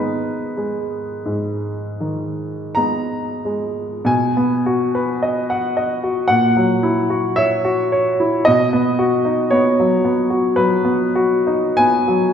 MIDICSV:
0, 0, Header, 1, 2, 480
1, 0, Start_track
1, 0, Key_signature, 5, "minor"
1, 0, Tempo, 1345291
1, 446, Tempo, 1522843
1, 926, Tempo, 1312910
1, 1406, Time_signature, 4, 2, 24, 8
1, 1406, Key_signature, 5, "major"
1, 1406, Tempo, 1104972
1, 2366, Tempo, 1069519
1, 4286, Tempo, 1212121
1, 4766, Tempo, 1125704
1, 4998, End_track
2, 0, Start_track
2, 0, Title_t, "Grand piano"
2, 0, Program_c, 0, 0
2, 0, Control_c, 0, 64, 127
2, 0, Note_on_c, 0, 44, 36
2, 0, Note_on_c, 0, 51, 33
2, 0, Note_on_c, 0, 56, 32
2, 0, Note_on_c, 0, 59, 27
2, 0, Note_on_c, 0, 63, 35
2, 0, Note_on_c, 0, 70, 56
2, 0, Note_on_c, 0, 71, 47
2, 109, Note_off_c, 0, 51, 0
2, 189, Note_off_c, 0, 56, 0
2, 190, Note_off_c, 0, 63, 0
2, 191, Note_off_c, 0, 59, 0
2, 204, Note_on_c, 0, 56, 30
2, 432, Note_off_c, 0, 44, 0
2, 448, Note_on_c, 0, 44, 31
2, 585, Note_off_c, 0, 56, 0
2, 684, Note_on_c, 0, 51, 29
2, 918, Note_on_c, 0, 82, 72
2, 922, Note_on_c, 0, 56, 26
2, 923, Note_on_c, 0, 59, 25
2, 927, Note_on_c, 0, 63, 27
2, 1079, Note_off_c, 0, 51, 0
2, 1162, Note_off_c, 0, 56, 0
2, 1162, Note_off_c, 0, 59, 0
2, 1165, Note_off_c, 0, 63, 0
2, 1174, Note_on_c, 0, 56, 30
2, 1175, Note_off_c, 0, 71, 0
2, 1392, Note_off_c, 0, 44, 0
2, 1392, Note_on_c, 0, 47, 55
2, 1398, Note_on_c, 0, 80, 67
2, 1401, Note_off_c, 0, 82, 0
2, 1403, Note_off_c, 0, 56, 0
2, 1414, Control_c, 0, 64, 0
2, 1415, Note_off_c, 0, 70, 0
2, 1492, Control_c, 0, 64, 127
2, 1529, Note_on_c, 0, 59, 42
2, 1656, Note_on_c, 0, 66, 49
2, 1726, Note_off_c, 0, 59, 0
2, 1781, Note_on_c, 0, 71, 47
2, 1849, Note_off_c, 0, 66, 0
2, 1901, Note_on_c, 0, 75, 46
2, 1971, Note_off_c, 0, 71, 0
2, 2020, Note_on_c, 0, 78, 53
2, 2090, Note_off_c, 0, 75, 0
2, 2137, Note_on_c, 0, 75, 46
2, 2207, Note_off_c, 0, 78, 0
2, 2253, Note_on_c, 0, 66, 41
2, 2322, Note_off_c, 0, 75, 0
2, 2340, Note_off_c, 0, 47, 0
2, 2357, Note_on_c, 0, 78, 78
2, 2361, Note_off_c, 0, 80, 0
2, 2365, Note_on_c, 0, 46, 46
2, 2366, Note_off_c, 0, 66, 0
2, 2373, Control_c, 0, 64, 0
2, 2433, Control_c, 0, 64, 127
2, 2488, Note_on_c, 0, 54, 38
2, 2606, Note_on_c, 0, 64, 45
2, 2677, Note_off_c, 0, 54, 0
2, 2727, Note_on_c, 0, 66, 46
2, 2799, Note_off_c, 0, 64, 0
2, 2843, Note_off_c, 0, 78, 0
2, 2844, Note_on_c, 0, 76, 72
2, 2852, Note_on_c, 0, 73, 44
2, 2924, Note_off_c, 0, 66, 0
2, 2972, Note_on_c, 0, 66, 47
2, 3048, Note_off_c, 0, 73, 0
2, 3096, Note_on_c, 0, 73, 54
2, 3168, Note_off_c, 0, 66, 0
2, 3220, Note_on_c, 0, 64, 40
2, 3288, Note_off_c, 0, 73, 0
2, 3317, Note_off_c, 0, 46, 0
2, 3332, Note_on_c, 0, 75, 83
2, 3334, Note_off_c, 0, 76, 0
2, 3338, Note_off_c, 0, 64, 0
2, 3341, Note_on_c, 0, 47, 50
2, 3343, Control_c, 0, 64, 0
2, 3408, Control_c, 0, 64, 127
2, 3458, Note_on_c, 0, 59, 46
2, 3574, Note_on_c, 0, 66, 51
2, 3645, Note_off_c, 0, 59, 0
2, 3691, Note_on_c, 0, 63, 40
2, 3763, Note_off_c, 0, 66, 0
2, 3806, Note_on_c, 0, 73, 71
2, 3808, Note_off_c, 0, 75, 0
2, 3813, Note_on_c, 0, 59, 43
2, 3882, Note_off_c, 0, 63, 0
2, 3937, Note_on_c, 0, 54, 46
2, 4002, Note_off_c, 0, 59, 0
2, 4049, Note_on_c, 0, 59, 41
2, 4122, Note_off_c, 0, 54, 0
2, 4164, Note_on_c, 0, 66, 39
2, 4238, Note_off_c, 0, 59, 0
2, 4270, Note_off_c, 0, 47, 0
2, 4280, Note_on_c, 0, 71, 72
2, 4283, Note_off_c, 0, 73, 0
2, 4284, Note_on_c, 0, 54, 42
2, 4350, Note_off_c, 0, 66, 0
2, 4394, Note_on_c, 0, 59, 42
2, 4468, Note_off_c, 0, 54, 0
2, 4516, Note_on_c, 0, 66, 45
2, 4594, Note_off_c, 0, 59, 0
2, 4640, Note_on_c, 0, 63, 42
2, 4716, Note_off_c, 0, 66, 0
2, 4759, Note_on_c, 0, 80, 89
2, 4763, Note_off_c, 0, 71, 0
2, 4766, Note_on_c, 0, 59, 43
2, 4838, Note_off_c, 0, 63, 0
2, 4890, Note_on_c, 0, 54, 45
2, 4960, Note_off_c, 0, 59, 0
2, 4998, Note_off_c, 0, 54, 0
2, 4998, Note_off_c, 0, 80, 0
2, 4998, End_track
0, 0, End_of_file